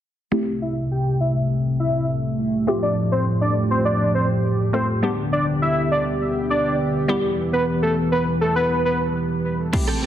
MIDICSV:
0, 0, Header, 1, 7, 480
1, 0, Start_track
1, 0, Key_signature, 0, "minor"
1, 0, Tempo, 588235
1, 264, Time_signature, 4, 2, 24, 8
1, 8210, End_track
2, 0, Start_track
2, 0, Title_t, "Analog synth lead"
2, 0, Program_c, 0, 81
2, 505, Note_on_c, 0, 76, 82
2, 610, Note_off_c, 0, 76, 0
2, 745, Note_on_c, 0, 79, 72
2, 956, Note_off_c, 0, 79, 0
2, 984, Note_on_c, 0, 76, 76
2, 1090, Note_off_c, 0, 76, 0
2, 1465, Note_on_c, 0, 76, 75
2, 1676, Note_off_c, 0, 76, 0
2, 2304, Note_on_c, 0, 74, 74
2, 2409, Note_off_c, 0, 74, 0
2, 2544, Note_on_c, 0, 72, 76
2, 2650, Note_off_c, 0, 72, 0
2, 2784, Note_on_c, 0, 74, 77
2, 2890, Note_off_c, 0, 74, 0
2, 3024, Note_on_c, 0, 72, 80
2, 3130, Note_off_c, 0, 72, 0
2, 3144, Note_on_c, 0, 74, 82
2, 3355, Note_off_c, 0, 74, 0
2, 3384, Note_on_c, 0, 72, 80
2, 3489, Note_off_c, 0, 72, 0
2, 3864, Note_on_c, 0, 72, 72
2, 3970, Note_off_c, 0, 72, 0
2, 4345, Note_on_c, 0, 74, 77
2, 4450, Note_off_c, 0, 74, 0
2, 4585, Note_on_c, 0, 76, 86
2, 4796, Note_off_c, 0, 76, 0
2, 4825, Note_on_c, 0, 74, 80
2, 4931, Note_off_c, 0, 74, 0
2, 5305, Note_on_c, 0, 74, 74
2, 5516, Note_off_c, 0, 74, 0
2, 6144, Note_on_c, 0, 71, 79
2, 6250, Note_off_c, 0, 71, 0
2, 6383, Note_on_c, 0, 69, 78
2, 6489, Note_off_c, 0, 69, 0
2, 6623, Note_on_c, 0, 71, 83
2, 6729, Note_off_c, 0, 71, 0
2, 6862, Note_on_c, 0, 69, 80
2, 6969, Note_off_c, 0, 69, 0
2, 6983, Note_on_c, 0, 71, 96
2, 7195, Note_off_c, 0, 71, 0
2, 7223, Note_on_c, 0, 71, 78
2, 7329, Note_off_c, 0, 71, 0
2, 8210, End_track
3, 0, Start_track
3, 0, Title_t, "Clean electric guitar"
3, 0, Program_c, 1, 27
3, 8059, Note_on_c, 1, 69, 80
3, 8067, Note_on_c, 1, 67, 70
3, 8074, Note_on_c, 1, 60, 64
3, 8169, Note_off_c, 1, 60, 0
3, 8169, Note_off_c, 1, 69, 0
3, 8172, Note_off_c, 1, 67, 0
3, 8179, Note_on_c, 1, 60, 61
3, 8210, Note_off_c, 1, 60, 0
3, 8210, End_track
4, 0, Start_track
4, 0, Title_t, "Synth pluck"
4, 0, Program_c, 2, 84
4, 259, Note_on_c, 2, 57, 77
4, 262, Note_on_c, 2, 60, 73
4, 264, Note_on_c, 2, 64, 72
4, 268, Note_on_c, 2, 67, 87
4, 2149, Note_off_c, 2, 57, 0
4, 2150, Note_off_c, 2, 60, 0
4, 2151, Note_off_c, 2, 64, 0
4, 2153, Note_off_c, 2, 67, 0
4, 2181, Note_on_c, 2, 57, 67
4, 2184, Note_on_c, 2, 60, 60
4, 2186, Note_on_c, 2, 65, 58
4, 2190, Note_on_c, 2, 67, 74
4, 3830, Note_off_c, 2, 57, 0
4, 3831, Note_off_c, 2, 60, 0
4, 3832, Note_off_c, 2, 65, 0
4, 3834, Note_off_c, 2, 67, 0
4, 3862, Note_on_c, 2, 57, 50
4, 3863, Note_on_c, 2, 60, 46
4, 3865, Note_on_c, 2, 65, 46
4, 3866, Note_on_c, 2, 69, 54
4, 4100, Note_on_c, 2, 55, 79
4, 4103, Note_off_c, 2, 57, 0
4, 4103, Note_on_c, 2, 59, 74
4, 4104, Note_off_c, 2, 60, 0
4, 4104, Note_off_c, 2, 65, 0
4, 4105, Note_off_c, 2, 69, 0
4, 4105, Note_on_c, 2, 62, 74
4, 4109, Note_on_c, 2, 67, 84
4, 5749, Note_off_c, 2, 55, 0
4, 5751, Note_off_c, 2, 59, 0
4, 5752, Note_off_c, 2, 62, 0
4, 5754, Note_off_c, 2, 67, 0
4, 5780, Note_on_c, 2, 55, 77
4, 5783, Note_on_c, 2, 59, 75
4, 5785, Note_on_c, 2, 64, 71
4, 5788, Note_on_c, 2, 67, 90
4, 7669, Note_off_c, 2, 55, 0
4, 7671, Note_off_c, 2, 59, 0
4, 7672, Note_off_c, 2, 64, 0
4, 7673, Note_off_c, 2, 67, 0
4, 7941, Note_on_c, 2, 57, 90
4, 7943, Note_on_c, 2, 60, 87
4, 7944, Note_on_c, 2, 64, 81
4, 7945, Note_on_c, 2, 67, 97
4, 8210, Note_off_c, 2, 57, 0
4, 8210, Note_off_c, 2, 60, 0
4, 8210, Note_off_c, 2, 64, 0
4, 8210, Note_off_c, 2, 67, 0
4, 8210, End_track
5, 0, Start_track
5, 0, Title_t, "Analog synth pad"
5, 0, Program_c, 3, 89
5, 264, Note_on_c, 3, 48, 77
5, 264, Note_on_c, 3, 67, 83
5, 265, Note_on_c, 3, 57, 69
5, 2165, Note_off_c, 3, 48, 0
5, 2183, Note_on_c, 3, 45, 79
5, 2183, Note_on_c, 3, 53, 73
5, 4072, Note_off_c, 3, 57, 0
5, 4084, Note_off_c, 3, 45, 0
5, 4084, Note_off_c, 3, 53, 0
5, 4104, Note_on_c, 3, 50, 78
5, 4104, Note_on_c, 3, 59, 73
5, 5767, Note_off_c, 3, 50, 0
5, 5784, Note_on_c, 3, 52, 82
5, 7911, Note_off_c, 3, 59, 0
5, 7911, Note_off_c, 3, 67, 0
5, 7922, Note_off_c, 3, 52, 0
5, 7943, Note_on_c, 3, 57, 69
5, 7944, Note_on_c, 3, 48, 79
5, 7944, Note_on_c, 3, 67, 84
5, 8210, Note_off_c, 3, 48, 0
5, 8210, Note_off_c, 3, 57, 0
5, 8210, Note_off_c, 3, 67, 0
5, 8210, End_track
6, 0, Start_track
6, 0, Title_t, "Muted clean electric guitar strokes"
6, 7940, Note_on_c, 9, 29, 43
6, 8022, Note_off_c, 9, 29, 0
6, 8210, End_track
7, 0, Start_track
7, 0, Title_t, "Drums"
7, 7943, Note_on_c, 9, 36, 111
7, 7944, Note_on_c, 9, 49, 80
7, 8025, Note_off_c, 9, 36, 0
7, 8025, Note_off_c, 9, 49, 0
7, 8210, End_track
0, 0, End_of_file